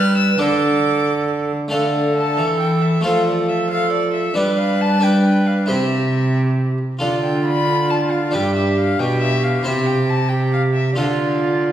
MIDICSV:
0, 0, Header, 1, 5, 480
1, 0, Start_track
1, 0, Tempo, 440852
1, 444, Time_signature, 6, 3, 24, 8
1, 12763, End_track
2, 0, Start_track
2, 0, Title_t, "Violin"
2, 0, Program_c, 0, 40
2, 0, Note_on_c, 0, 89, 109
2, 185, Note_off_c, 0, 89, 0
2, 191, Note_on_c, 0, 88, 90
2, 428, Note_on_c, 0, 86, 91
2, 445, Note_off_c, 0, 88, 0
2, 1646, Note_off_c, 0, 86, 0
2, 1880, Note_on_c, 0, 74, 65
2, 2332, Note_off_c, 0, 74, 0
2, 2351, Note_on_c, 0, 81, 85
2, 2821, Note_off_c, 0, 81, 0
2, 2828, Note_on_c, 0, 79, 70
2, 3073, Note_on_c, 0, 76, 70
2, 3089, Note_off_c, 0, 79, 0
2, 3325, Note_on_c, 0, 77, 83
2, 3341, Note_off_c, 0, 76, 0
2, 3561, Note_off_c, 0, 77, 0
2, 3567, Note_on_c, 0, 74, 71
2, 3803, Note_on_c, 0, 76, 81
2, 3819, Note_off_c, 0, 74, 0
2, 4027, Note_off_c, 0, 76, 0
2, 4033, Note_on_c, 0, 77, 91
2, 4269, Note_off_c, 0, 77, 0
2, 4275, Note_on_c, 0, 74, 87
2, 4494, Note_off_c, 0, 74, 0
2, 4501, Note_on_c, 0, 76, 76
2, 4756, Note_on_c, 0, 74, 95
2, 4772, Note_off_c, 0, 76, 0
2, 4992, Note_off_c, 0, 74, 0
2, 4999, Note_on_c, 0, 77, 88
2, 5247, Note_on_c, 0, 81, 103
2, 5263, Note_off_c, 0, 77, 0
2, 5480, Note_on_c, 0, 79, 82
2, 5496, Note_off_c, 0, 81, 0
2, 5952, Note_on_c, 0, 77, 64
2, 5968, Note_off_c, 0, 79, 0
2, 6180, Note_off_c, 0, 77, 0
2, 6186, Note_on_c, 0, 76, 65
2, 6898, Note_off_c, 0, 76, 0
2, 7644, Note_on_c, 0, 74, 77
2, 7865, Note_off_c, 0, 74, 0
2, 7878, Note_on_c, 0, 79, 70
2, 8109, Note_off_c, 0, 79, 0
2, 8115, Note_on_c, 0, 83, 102
2, 8601, Note_on_c, 0, 81, 81
2, 8617, Note_off_c, 0, 83, 0
2, 8828, Note_on_c, 0, 77, 75
2, 8845, Note_off_c, 0, 81, 0
2, 9076, Note_on_c, 0, 79, 92
2, 9092, Note_off_c, 0, 77, 0
2, 9307, Note_off_c, 0, 79, 0
2, 9314, Note_on_c, 0, 76, 69
2, 9552, Note_on_c, 0, 77, 86
2, 9569, Note_off_c, 0, 76, 0
2, 9793, Note_on_c, 0, 79, 83
2, 9809, Note_off_c, 0, 77, 0
2, 10027, Note_off_c, 0, 79, 0
2, 10034, Note_on_c, 0, 76, 91
2, 10275, Note_on_c, 0, 77, 77
2, 10291, Note_off_c, 0, 76, 0
2, 10514, Note_on_c, 0, 76, 81
2, 10530, Note_off_c, 0, 77, 0
2, 10745, Note_on_c, 0, 79, 77
2, 10761, Note_off_c, 0, 76, 0
2, 10991, Note_on_c, 0, 81, 92
2, 11007, Note_off_c, 0, 79, 0
2, 11203, Note_on_c, 0, 79, 75
2, 11219, Note_off_c, 0, 81, 0
2, 11455, Note_off_c, 0, 79, 0
2, 11465, Note_on_c, 0, 77, 83
2, 11553, Note_off_c, 0, 77, 0
2, 11691, Note_on_c, 0, 76, 69
2, 11923, Note_off_c, 0, 76, 0
2, 11930, Note_on_c, 0, 74, 67
2, 12763, Note_off_c, 0, 74, 0
2, 12763, End_track
3, 0, Start_track
3, 0, Title_t, "Recorder"
3, 0, Program_c, 1, 74
3, 0, Note_on_c, 1, 71, 83
3, 450, Note_on_c, 1, 69, 78
3, 466, Note_off_c, 1, 71, 0
3, 1657, Note_off_c, 1, 69, 0
3, 1889, Note_on_c, 1, 69, 63
3, 3281, Note_off_c, 1, 69, 0
3, 3340, Note_on_c, 1, 69, 59
3, 4033, Note_off_c, 1, 69, 0
3, 4045, Note_on_c, 1, 69, 69
3, 4741, Note_off_c, 1, 69, 0
3, 4751, Note_on_c, 1, 71, 68
3, 5423, Note_off_c, 1, 71, 0
3, 5466, Note_on_c, 1, 71, 72
3, 6188, Note_on_c, 1, 67, 56
3, 6205, Note_off_c, 1, 71, 0
3, 7397, Note_off_c, 1, 67, 0
3, 7636, Note_on_c, 1, 65, 57
3, 9097, Note_on_c, 1, 67, 61
3, 9113, Note_off_c, 1, 65, 0
3, 9802, Note_off_c, 1, 67, 0
3, 9810, Note_on_c, 1, 67, 67
3, 10502, Note_off_c, 1, 67, 0
3, 10520, Note_on_c, 1, 67, 62
3, 11218, Note_off_c, 1, 67, 0
3, 11229, Note_on_c, 1, 67, 62
3, 11955, Note_on_c, 1, 65, 57
3, 11971, Note_off_c, 1, 67, 0
3, 12763, Note_off_c, 1, 65, 0
3, 12763, End_track
4, 0, Start_track
4, 0, Title_t, "Harpsichord"
4, 0, Program_c, 2, 6
4, 0, Note_on_c, 2, 55, 75
4, 0, Note_on_c, 2, 62, 68
4, 0, Note_on_c, 2, 71, 75
4, 390, Note_off_c, 2, 62, 0
4, 397, Note_off_c, 2, 71, 0
4, 405, Note_off_c, 2, 55, 0
4, 413, Note_on_c, 2, 62, 60
4, 424, Note_on_c, 2, 69, 53
4, 438, Note_on_c, 2, 50, 63
4, 1630, Note_off_c, 2, 50, 0
4, 1832, Note_on_c, 2, 57, 43
4, 1836, Note_off_c, 2, 62, 0
4, 1841, Note_off_c, 2, 69, 0
4, 1852, Note_on_c, 2, 77, 46
4, 1858, Note_on_c, 2, 69, 44
4, 1870, Note_on_c, 2, 50, 47
4, 2556, Note_off_c, 2, 50, 0
4, 2559, Note_off_c, 2, 57, 0
4, 2584, Note_on_c, 2, 52, 45
4, 3262, Note_off_c, 2, 77, 0
4, 3266, Note_off_c, 2, 69, 0
4, 3270, Note_off_c, 2, 52, 0
4, 3279, Note_on_c, 2, 57, 46
4, 3291, Note_on_c, 2, 65, 44
4, 3312, Note_on_c, 2, 69, 43
4, 3321, Note_on_c, 2, 53, 51
4, 4685, Note_off_c, 2, 57, 0
4, 4691, Note_off_c, 2, 65, 0
4, 4702, Note_off_c, 2, 69, 0
4, 4706, Note_off_c, 2, 53, 0
4, 4725, Note_on_c, 2, 62, 52
4, 4740, Note_on_c, 2, 71, 52
4, 4750, Note_on_c, 2, 55, 53
4, 5429, Note_off_c, 2, 62, 0
4, 5440, Note_off_c, 2, 71, 0
4, 5442, Note_on_c, 2, 62, 51
4, 5454, Note_on_c, 2, 71, 46
4, 6146, Note_off_c, 2, 55, 0
4, 6155, Note_off_c, 2, 62, 0
4, 6161, Note_off_c, 2, 71, 0
4, 6164, Note_on_c, 2, 64, 40
4, 6182, Note_on_c, 2, 72, 44
4, 6194, Note_on_c, 2, 48, 49
4, 7378, Note_off_c, 2, 48, 0
4, 7583, Note_off_c, 2, 64, 0
4, 7592, Note_off_c, 2, 72, 0
4, 7608, Note_on_c, 2, 65, 41
4, 7621, Note_on_c, 2, 69, 41
4, 7635, Note_on_c, 2, 50, 44
4, 9016, Note_off_c, 2, 65, 0
4, 9023, Note_off_c, 2, 69, 0
4, 9029, Note_off_c, 2, 50, 0
4, 9047, Note_on_c, 2, 62, 47
4, 9067, Note_on_c, 2, 71, 47
4, 9075, Note_on_c, 2, 43, 55
4, 9747, Note_off_c, 2, 43, 0
4, 9794, Note_on_c, 2, 47, 56
4, 10450, Note_off_c, 2, 62, 0
4, 10460, Note_off_c, 2, 71, 0
4, 10465, Note_off_c, 2, 47, 0
4, 10485, Note_on_c, 2, 64, 46
4, 10501, Note_on_c, 2, 72, 48
4, 10510, Note_on_c, 2, 48, 50
4, 11895, Note_off_c, 2, 64, 0
4, 11903, Note_off_c, 2, 72, 0
4, 11907, Note_off_c, 2, 48, 0
4, 11927, Note_on_c, 2, 65, 43
4, 11938, Note_on_c, 2, 69, 44
4, 11954, Note_on_c, 2, 50, 48
4, 12763, Note_off_c, 2, 50, 0
4, 12763, Note_off_c, 2, 65, 0
4, 12763, Note_off_c, 2, 69, 0
4, 12763, End_track
5, 0, Start_track
5, 0, Title_t, "Cello"
5, 0, Program_c, 3, 42
5, 0, Note_on_c, 3, 55, 78
5, 418, Note_off_c, 3, 55, 0
5, 438, Note_on_c, 3, 50, 74
5, 1648, Note_off_c, 3, 50, 0
5, 1893, Note_on_c, 3, 50, 54
5, 2612, Note_on_c, 3, 52, 57
5, 2628, Note_off_c, 3, 50, 0
5, 3310, Note_off_c, 3, 52, 0
5, 3317, Note_on_c, 3, 53, 58
5, 4719, Note_off_c, 3, 53, 0
5, 4756, Note_on_c, 3, 55, 75
5, 6205, Note_on_c, 3, 48, 65
5, 6221, Note_off_c, 3, 55, 0
5, 7427, Note_off_c, 3, 48, 0
5, 7640, Note_on_c, 3, 50, 58
5, 9077, Note_on_c, 3, 43, 60
5, 9094, Note_off_c, 3, 50, 0
5, 9792, Note_off_c, 3, 43, 0
5, 9797, Note_on_c, 3, 47, 63
5, 10496, Note_off_c, 3, 47, 0
5, 10511, Note_on_c, 3, 48, 66
5, 11922, Note_off_c, 3, 48, 0
5, 11952, Note_on_c, 3, 50, 60
5, 12763, Note_off_c, 3, 50, 0
5, 12763, End_track
0, 0, End_of_file